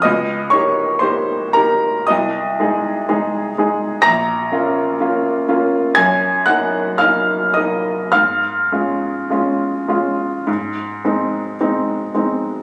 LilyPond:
\new Staff \with { instrumentName = "Upright piano" } { \time 4/4 \key ees \dorian \tempo 4 = 57 << { <ees'' ees'''>8 <des'' des'''>8 <c'' c'''>8 <bes' bes''>8 <ees'' ees'''>4. r8 | <bes'' bes'''>2 <aes'' aes'''>8 <ges'' ges'''>8 <f'' f'''>8 <ees'' ees'''>8 | <f'' f'''>2. r4 | } \\ { des,8 <bes ees' g'>8 <bes ees' g'>8 <bes ees' g'>8 c,8 <aes ees' aes'>8 <aes ees' aes'>8 <aes ees' aes'>8 | bes,,8 <bes des' f'>8 <bes des' f'>8 <bes des' f'>8 ges,8 <bes ees'>8 <bes ees'>8 <bes ees'>8 | aes,8 <aes des' f'>8 <aes des' f'>8 <aes des' f'>8 aes,8 <aes c' ees'>8 <aes c' ees'>8 <aes c' ees'>8 | } >> }